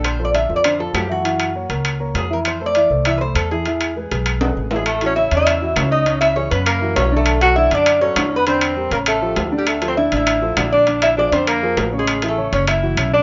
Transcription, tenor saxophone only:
4.76 G#3
4.87 A3
5.06 C#4
5.15 E4
5.35 E4
5.91 D#4
6.21 E4
6.36 C#4
6.50 B3
6.66 A#3
6.97 C#4
7.17 A3
7.42 F#4
7.58 E4
7.77 D4
8.02 C#4
8.37 B3
8.48 C4
8.93 A#3
9.08 A3
9.57 G3
9.68 A3
9.89 C4
9.98 E4
10.17 E4
10.73 D4
11.02 E4
11.17 D4
11.33 C4
11.48 A#3
11.98 G#3
12.29 A3
12.54 C#4
12.68 E4
13.14 D4

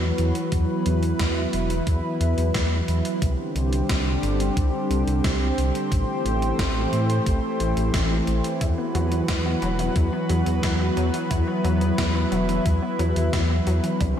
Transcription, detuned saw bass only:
Already playing: E2
0.19 E2
0.52 E2
0.86 E2
1.20 E2
1.53 E1
1.87 E2
2.21 E2
2.38 E2
2.55 E2
2.88 E2
3.22 C2
3.55 C2
3.90 C2
4.23 G1
4.57 C2
4.90 C2
5.07 C2
5.24 C2
5.58 C2
5.92 A1
6.25 A1
6.59 A1
6.93 A2
7.26 A1
7.60 A1
7.77 A1
7.94 A1
8.27 A1
8.61 E2
8.95 E2
9.29 E2
9.62 E1
9.96 E2
10.30 E2
10.46 E2
10.63 E2
10.97 E2
11.31 E2
11.64 E2
11.98 E2
12.32 E1
12.66 E2
12.99 E2
13.16 E2
13.33 E2
13.66 E2
14.01 C2

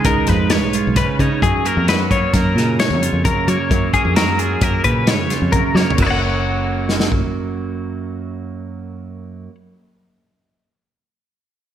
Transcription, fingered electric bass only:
0.05 C#2
0.28 F2
0.63 B1
0.87 B1
1.19 C#3
1.42 F#2
1.77 F2
1.99 F#2
2.34 F#2
2.55 A#2
2.90 F2
3.13 F2
3.48 F#3
3.71 F#2
4.05 F2
4.28 F#2
4.61 F#2
4.85 A#2
5.18 F2
5.42 F2
5.75 F#3
5.99 F#1

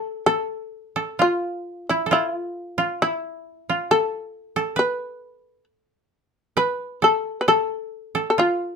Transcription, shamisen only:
Already playing: A4
0.26 A4
1.22 F4
1.89 E4
2.13 E4
2.33 F4
3.02 E4
3.91 A4
4.79 B4
6.57 B4
7.04 A4
7.41 B4
7.48 A4
8.30 A4
8.39 F4

